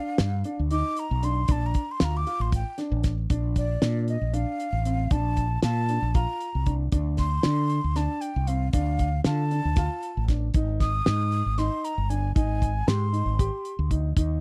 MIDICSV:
0, 0, Header, 1, 5, 480
1, 0, Start_track
1, 0, Key_signature, -2, "major"
1, 0, Tempo, 517241
1, 1385, Time_signature, 7, 3, 24, 8
1, 13368, End_track
2, 0, Start_track
2, 0, Title_t, "Flute"
2, 0, Program_c, 0, 73
2, 0, Note_on_c, 0, 77, 97
2, 546, Note_off_c, 0, 77, 0
2, 667, Note_on_c, 0, 86, 88
2, 921, Note_on_c, 0, 82, 86
2, 935, Note_off_c, 0, 86, 0
2, 1155, Note_on_c, 0, 84, 90
2, 1168, Note_off_c, 0, 82, 0
2, 1407, Note_on_c, 0, 81, 84
2, 1421, Note_off_c, 0, 84, 0
2, 1542, Note_on_c, 0, 82, 78
2, 1556, Note_off_c, 0, 81, 0
2, 1776, Note_on_c, 0, 84, 83
2, 1790, Note_off_c, 0, 82, 0
2, 1898, Note_on_c, 0, 82, 82
2, 1912, Note_off_c, 0, 84, 0
2, 2012, Note_on_c, 0, 86, 91
2, 2026, Note_off_c, 0, 82, 0
2, 2240, Note_on_c, 0, 84, 82
2, 2254, Note_off_c, 0, 86, 0
2, 2353, Note_off_c, 0, 84, 0
2, 2368, Note_on_c, 0, 79, 73
2, 2581, Note_off_c, 0, 79, 0
2, 3322, Note_on_c, 0, 74, 73
2, 3761, Note_off_c, 0, 74, 0
2, 3794, Note_on_c, 0, 75, 75
2, 4030, Note_on_c, 0, 77, 82
2, 4044, Note_off_c, 0, 75, 0
2, 4748, Note_on_c, 0, 81, 97
2, 4762, Note_off_c, 0, 77, 0
2, 5221, Note_off_c, 0, 81, 0
2, 5226, Note_on_c, 0, 81, 101
2, 5705, Note_on_c, 0, 82, 86
2, 5719, Note_off_c, 0, 81, 0
2, 6247, Note_off_c, 0, 82, 0
2, 6671, Note_on_c, 0, 84, 105
2, 7391, Note_on_c, 0, 81, 87
2, 7405, Note_off_c, 0, 84, 0
2, 7620, Note_on_c, 0, 79, 75
2, 7634, Note_off_c, 0, 81, 0
2, 7865, Note_on_c, 0, 77, 77
2, 7879, Note_off_c, 0, 79, 0
2, 8086, Note_off_c, 0, 77, 0
2, 8092, Note_on_c, 0, 77, 84
2, 8546, Note_off_c, 0, 77, 0
2, 8589, Note_on_c, 0, 81, 94
2, 9511, Note_off_c, 0, 81, 0
2, 10029, Note_on_c, 0, 87, 105
2, 10750, Note_on_c, 0, 84, 87
2, 10764, Note_off_c, 0, 87, 0
2, 10993, Note_on_c, 0, 82, 80
2, 11007, Note_off_c, 0, 84, 0
2, 11225, Note_on_c, 0, 80, 81
2, 11238, Note_off_c, 0, 82, 0
2, 11459, Note_off_c, 0, 80, 0
2, 11465, Note_on_c, 0, 80, 83
2, 11950, Note_on_c, 0, 84, 86
2, 11964, Note_off_c, 0, 80, 0
2, 12907, Note_off_c, 0, 84, 0
2, 13368, End_track
3, 0, Start_track
3, 0, Title_t, "Grand piano"
3, 0, Program_c, 1, 0
3, 0, Note_on_c, 1, 62, 81
3, 235, Note_off_c, 1, 62, 0
3, 420, Note_on_c, 1, 62, 72
3, 568, Note_off_c, 1, 62, 0
3, 658, Note_on_c, 1, 63, 90
3, 955, Note_off_c, 1, 63, 0
3, 1141, Note_on_c, 1, 62, 76
3, 1290, Note_off_c, 1, 62, 0
3, 1377, Note_on_c, 1, 62, 88
3, 1674, Note_off_c, 1, 62, 0
3, 1862, Note_on_c, 1, 65, 75
3, 2010, Note_off_c, 1, 65, 0
3, 2105, Note_on_c, 1, 65, 77
3, 2400, Note_off_c, 1, 65, 0
3, 2584, Note_on_c, 1, 62, 74
3, 2879, Note_off_c, 1, 62, 0
3, 3065, Note_on_c, 1, 62, 78
3, 3360, Note_off_c, 1, 62, 0
3, 3542, Note_on_c, 1, 62, 72
3, 3839, Note_off_c, 1, 62, 0
3, 4021, Note_on_c, 1, 62, 77
3, 4318, Note_off_c, 1, 62, 0
3, 4505, Note_on_c, 1, 60, 63
3, 4653, Note_off_c, 1, 60, 0
3, 4744, Note_on_c, 1, 62, 79
3, 5040, Note_off_c, 1, 62, 0
3, 5233, Note_on_c, 1, 65, 71
3, 5379, Note_off_c, 1, 65, 0
3, 5472, Note_on_c, 1, 62, 62
3, 5618, Note_off_c, 1, 62, 0
3, 5707, Note_on_c, 1, 65, 80
3, 6003, Note_off_c, 1, 65, 0
3, 6186, Note_on_c, 1, 62, 63
3, 6334, Note_off_c, 1, 62, 0
3, 6424, Note_on_c, 1, 62, 80
3, 6720, Note_off_c, 1, 62, 0
3, 6909, Note_on_c, 1, 62, 76
3, 7203, Note_off_c, 1, 62, 0
3, 7387, Note_on_c, 1, 62, 86
3, 7682, Note_off_c, 1, 62, 0
3, 7868, Note_on_c, 1, 60, 60
3, 8015, Note_off_c, 1, 60, 0
3, 8111, Note_on_c, 1, 62, 82
3, 8405, Note_off_c, 1, 62, 0
3, 8585, Note_on_c, 1, 65, 76
3, 8733, Note_off_c, 1, 65, 0
3, 8831, Note_on_c, 1, 62, 63
3, 8978, Note_off_c, 1, 62, 0
3, 9073, Note_on_c, 1, 65, 84
3, 9366, Note_off_c, 1, 65, 0
3, 9551, Note_on_c, 1, 62, 62
3, 9697, Note_off_c, 1, 62, 0
3, 9792, Note_on_c, 1, 63, 81
3, 10085, Note_off_c, 1, 63, 0
3, 10271, Note_on_c, 1, 63, 66
3, 10565, Note_off_c, 1, 63, 0
3, 10747, Note_on_c, 1, 63, 88
3, 11042, Note_off_c, 1, 63, 0
3, 11228, Note_on_c, 1, 62, 61
3, 11375, Note_off_c, 1, 62, 0
3, 11464, Note_on_c, 1, 63, 88
3, 11759, Note_off_c, 1, 63, 0
3, 11947, Note_on_c, 1, 67, 73
3, 12094, Note_off_c, 1, 67, 0
3, 12180, Note_on_c, 1, 63, 64
3, 12329, Note_off_c, 1, 63, 0
3, 12426, Note_on_c, 1, 67, 87
3, 12720, Note_off_c, 1, 67, 0
3, 12906, Note_on_c, 1, 63, 63
3, 13053, Note_off_c, 1, 63, 0
3, 13148, Note_on_c, 1, 63, 78
3, 13368, Note_off_c, 1, 63, 0
3, 13368, End_track
4, 0, Start_track
4, 0, Title_t, "Fretless electric bass"
4, 0, Program_c, 2, 35
4, 184, Note_on_c, 2, 43, 84
4, 394, Note_off_c, 2, 43, 0
4, 552, Note_on_c, 2, 38, 78
4, 759, Note_off_c, 2, 38, 0
4, 1029, Note_on_c, 2, 35, 90
4, 1343, Note_off_c, 2, 35, 0
4, 1383, Note_on_c, 2, 34, 86
4, 1594, Note_off_c, 2, 34, 0
4, 1869, Note_on_c, 2, 38, 85
4, 2078, Note_off_c, 2, 38, 0
4, 2225, Note_on_c, 2, 33, 79
4, 2436, Note_off_c, 2, 33, 0
4, 2706, Note_on_c, 2, 33, 104
4, 3021, Note_off_c, 2, 33, 0
4, 3065, Note_on_c, 2, 34, 86
4, 3486, Note_off_c, 2, 34, 0
4, 3545, Note_on_c, 2, 46, 83
4, 3861, Note_off_c, 2, 46, 0
4, 3911, Note_on_c, 2, 34, 73
4, 4120, Note_off_c, 2, 34, 0
4, 4386, Note_on_c, 2, 33, 81
4, 4702, Note_off_c, 2, 33, 0
4, 4746, Note_on_c, 2, 34, 89
4, 5167, Note_off_c, 2, 34, 0
4, 5227, Note_on_c, 2, 46, 91
4, 5543, Note_off_c, 2, 46, 0
4, 5589, Note_on_c, 2, 34, 78
4, 5799, Note_off_c, 2, 34, 0
4, 6078, Note_on_c, 2, 36, 80
4, 6389, Note_off_c, 2, 36, 0
4, 6427, Note_on_c, 2, 38, 84
4, 6849, Note_off_c, 2, 38, 0
4, 6916, Note_on_c, 2, 50, 84
4, 7228, Note_off_c, 2, 50, 0
4, 7277, Note_on_c, 2, 38, 78
4, 7484, Note_off_c, 2, 38, 0
4, 7759, Note_on_c, 2, 36, 87
4, 8070, Note_off_c, 2, 36, 0
4, 8108, Note_on_c, 2, 38, 88
4, 8529, Note_off_c, 2, 38, 0
4, 8591, Note_on_c, 2, 50, 91
4, 8905, Note_off_c, 2, 50, 0
4, 8957, Note_on_c, 2, 38, 73
4, 9163, Note_off_c, 2, 38, 0
4, 9438, Note_on_c, 2, 33, 79
4, 9749, Note_off_c, 2, 33, 0
4, 9787, Note_on_c, 2, 32, 83
4, 10208, Note_off_c, 2, 32, 0
4, 10278, Note_on_c, 2, 44, 91
4, 10589, Note_off_c, 2, 44, 0
4, 10635, Note_on_c, 2, 32, 75
4, 10842, Note_off_c, 2, 32, 0
4, 11114, Note_on_c, 2, 31, 80
4, 11426, Note_off_c, 2, 31, 0
4, 11475, Note_on_c, 2, 32, 81
4, 11892, Note_off_c, 2, 32, 0
4, 11947, Note_on_c, 2, 44, 92
4, 12262, Note_off_c, 2, 44, 0
4, 12301, Note_on_c, 2, 32, 80
4, 12513, Note_off_c, 2, 32, 0
4, 12795, Note_on_c, 2, 38, 85
4, 13106, Note_off_c, 2, 38, 0
4, 13151, Note_on_c, 2, 39, 85
4, 13368, Note_off_c, 2, 39, 0
4, 13368, End_track
5, 0, Start_track
5, 0, Title_t, "Drums"
5, 170, Note_on_c, 9, 38, 110
5, 170, Note_on_c, 9, 42, 78
5, 263, Note_off_c, 9, 38, 0
5, 263, Note_off_c, 9, 42, 0
5, 411, Note_on_c, 9, 42, 60
5, 504, Note_off_c, 9, 42, 0
5, 655, Note_on_c, 9, 42, 76
5, 748, Note_off_c, 9, 42, 0
5, 895, Note_on_c, 9, 42, 65
5, 988, Note_off_c, 9, 42, 0
5, 1138, Note_on_c, 9, 42, 58
5, 1231, Note_off_c, 9, 42, 0
5, 1372, Note_on_c, 9, 42, 76
5, 1380, Note_on_c, 9, 36, 94
5, 1465, Note_off_c, 9, 42, 0
5, 1473, Note_off_c, 9, 36, 0
5, 1614, Note_on_c, 9, 42, 50
5, 1621, Note_on_c, 9, 36, 73
5, 1706, Note_off_c, 9, 42, 0
5, 1714, Note_off_c, 9, 36, 0
5, 1856, Note_on_c, 9, 38, 111
5, 1856, Note_on_c, 9, 42, 78
5, 1949, Note_off_c, 9, 38, 0
5, 1949, Note_off_c, 9, 42, 0
5, 2104, Note_on_c, 9, 42, 57
5, 2197, Note_off_c, 9, 42, 0
5, 2340, Note_on_c, 9, 42, 66
5, 2343, Note_on_c, 9, 36, 97
5, 2433, Note_off_c, 9, 42, 0
5, 2435, Note_off_c, 9, 36, 0
5, 2578, Note_on_c, 9, 38, 34
5, 2578, Note_on_c, 9, 42, 58
5, 2671, Note_off_c, 9, 38, 0
5, 2671, Note_off_c, 9, 42, 0
5, 2816, Note_on_c, 9, 38, 33
5, 2816, Note_on_c, 9, 42, 60
5, 2823, Note_on_c, 9, 36, 72
5, 2909, Note_off_c, 9, 38, 0
5, 2909, Note_off_c, 9, 42, 0
5, 2916, Note_off_c, 9, 36, 0
5, 3061, Note_on_c, 9, 42, 76
5, 3064, Note_on_c, 9, 36, 91
5, 3153, Note_off_c, 9, 42, 0
5, 3156, Note_off_c, 9, 36, 0
5, 3301, Note_on_c, 9, 42, 57
5, 3304, Note_on_c, 9, 36, 66
5, 3394, Note_off_c, 9, 42, 0
5, 3397, Note_off_c, 9, 36, 0
5, 3543, Note_on_c, 9, 38, 93
5, 3543, Note_on_c, 9, 42, 75
5, 3636, Note_off_c, 9, 38, 0
5, 3636, Note_off_c, 9, 42, 0
5, 3784, Note_on_c, 9, 42, 55
5, 3877, Note_off_c, 9, 42, 0
5, 4024, Note_on_c, 9, 42, 71
5, 4117, Note_off_c, 9, 42, 0
5, 4266, Note_on_c, 9, 42, 56
5, 4359, Note_off_c, 9, 42, 0
5, 4504, Note_on_c, 9, 42, 57
5, 4596, Note_off_c, 9, 42, 0
5, 4738, Note_on_c, 9, 42, 74
5, 4742, Note_on_c, 9, 36, 90
5, 4831, Note_off_c, 9, 42, 0
5, 4835, Note_off_c, 9, 36, 0
5, 4978, Note_on_c, 9, 42, 53
5, 4983, Note_on_c, 9, 36, 64
5, 5071, Note_off_c, 9, 42, 0
5, 5076, Note_off_c, 9, 36, 0
5, 5220, Note_on_c, 9, 38, 93
5, 5220, Note_on_c, 9, 42, 71
5, 5313, Note_off_c, 9, 38, 0
5, 5313, Note_off_c, 9, 42, 0
5, 5462, Note_on_c, 9, 42, 57
5, 5555, Note_off_c, 9, 42, 0
5, 5700, Note_on_c, 9, 42, 65
5, 5706, Note_on_c, 9, 36, 98
5, 5793, Note_off_c, 9, 42, 0
5, 5799, Note_off_c, 9, 36, 0
5, 5943, Note_on_c, 9, 42, 54
5, 6036, Note_off_c, 9, 42, 0
5, 6179, Note_on_c, 9, 42, 52
5, 6186, Note_on_c, 9, 36, 65
5, 6272, Note_off_c, 9, 42, 0
5, 6278, Note_off_c, 9, 36, 0
5, 6420, Note_on_c, 9, 42, 75
5, 6426, Note_on_c, 9, 36, 95
5, 6512, Note_off_c, 9, 42, 0
5, 6519, Note_off_c, 9, 36, 0
5, 6656, Note_on_c, 9, 38, 28
5, 6656, Note_on_c, 9, 42, 53
5, 6665, Note_on_c, 9, 36, 64
5, 6749, Note_off_c, 9, 38, 0
5, 6749, Note_off_c, 9, 42, 0
5, 6758, Note_off_c, 9, 36, 0
5, 6898, Note_on_c, 9, 38, 97
5, 6898, Note_on_c, 9, 42, 72
5, 6991, Note_off_c, 9, 38, 0
5, 6991, Note_off_c, 9, 42, 0
5, 7142, Note_on_c, 9, 42, 59
5, 7235, Note_off_c, 9, 42, 0
5, 7384, Note_on_c, 9, 38, 29
5, 7384, Note_on_c, 9, 42, 73
5, 7476, Note_off_c, 9, 38, 0
5, 7476, Note_off_c, 9, 42, 0
5, 7623, Note_on_c, 9, 42, 59
5, 7716, Note_off_c, 9, 42, 0
5, 7862, Note_on_c, 9, 42, 61
5, 7955, Note_off_c, 9, 42, 0
5, 8101, Note_on_c, 9, 42, 84
5, 8106, Note_on_c, 9, 36, 97
5, 8194, Note_off_c, 9, 42, 0
5, 8199, Note_off_c, 9, 36, 0
5, 8341, Note_on_c, 9, 42, 52
5, 8346, Note_on_c, 9, 36, 71
5, 8434, Note_off_c, 9, 42, 0
5, 8438, Note_off_c, 9, 36, 0
5, 8579, Note_on_c, 9, 38, 94
5, 8579, Note_on_c, 9, 42, 73
5, 8672, Note_off_c, 9, 38, 0
5, 8672, Note_off_c, 9, 42, 0
5, 8825, Note_on_c, 9, 42, 56
5, 8918, Note_off_c, 9, 42, 0
5, 9056, Note_on_c, 9, 38, 30
5, 9056, Note_on_c, 9, 42, 72
5, 9063, Note_on_c, 9, 36, 98
5, 9149, Note_off_c, 9, 38, 0
5, 9149, Note_off_c, 9, 42, 0
5, 9156, Note_off_c, 9, 36, 0
5, 9304, Note_on_c, 9, 42, 58
5, 9397, Note_off_c, 9, 42, 0
5, 9542, Note_on_c, 9, 38, 32
5, 9542, Note_on_c, 9, 42, 51
5, 9544, Note_on_c, 9, 36, 68
5, 9634, Note_off_c, 9, 38, 0
5, 9634, Note_off_c, 9, 42, 0
5, 9637, Note_off_c, 9, 36, 0
5, 9778, Note_on_c, 9, 42, 74
5, 9785, Note_on_c, 9, 36, 102
5, 9871, Note_off_c, 9, 42, 0
5, 9878, Note_off_c, 9, 36, 0
5, 10026, Note_on_c, 9, 36, 72
5, 10027, Note_on_c, 9, 38, 31
5, 10027, Note_on_c, 9, 42, 53
5, 10119, Note_off_c, 9, 36, 0
5, 10120, Note_off_c, 9, 38, 0
5, 10120, Note_off_c, 9, 42, 0
5, 10265, Note_on_c, 9, 38, 95
5, 10265, Note_on_c, 9, 42, 64
5, 10358, Note_off_c, 9, 38, 0
5, 10358, Note_off_c, 9, 42, 0
5, 10504, Note_on_c, 9, 42, 53
5, 10597, Note_off_c, 9, 42, 0
5, 10744, Note_on_c, 9, 38, 30
5, 10744, Note_on_c, 9, 42, 69
5, 10837, Note_off_c, 9, 38, 0
5, 10837, Note_off_c, 9, 42, 0
5, 10992, Note_on_c, 9, 42, 59
5, 11085, Note_off_c, 9, 42, 0
5, 11231, Note_on_c, 9, 42, 54
5, 11324, Note_off_c, 9, 42, 0
5, 11470, Note_on_c, 9, 36, 91
5, 11471, Note_on_c, 9, 42, 71
5, 11563, Note_off_c, 9, 36, 0
5, 11564, Note_off_c, 9, 42, 0
5, 11710, Note_on_c, 9, 36, 69
5, 11714, Note_on_c, 9, 42, 58
5, 11803, Note_off_c, 9, 36, 0
5, 11807, Note_off_c, 9, 42, 0
5, 11952, Note_on_c, 9, 38, 98
5, 11952, Note_on_c, 9, 42, 76
5, 12045, Note_off_c, 9, 38, 0
5, 12045, Note_off_c, 9, 42, 0
5, 12191, Note_on_c, 9, 42, 60
5, 12283, Note_off_c, 9, 42, 0
5, 12428, Note_on_c, 9, 36, 86
5, 12428, Note_on_c, 9, 42, 78
5, 12521, Note_off_c, 9, 36, 0
5, 12521, Note_off_c, 9, 42, 0
5, 12666, Note_on_c, 9, 42, 60
5, 12759, Note_off_c, 9, 42, 0
5, 12906, Note_on_c, 9, 42, 57
5, 12907, Note_on_c, 9, 36, 68
5, 12999, Note_off_c, 9, 36, 0
5, 12999, Note_off_c, 9, 42, 0
5, 13146, Note_on_c, 9, 36, 102
5, 13148, Note_on_c, 9, 42, 78
5, 13239, Note_off_c, 9, 36, 0
5, 13240, Note_off_c, 9, 42, 0
5, 13368, End_track
0, 0, End_of_file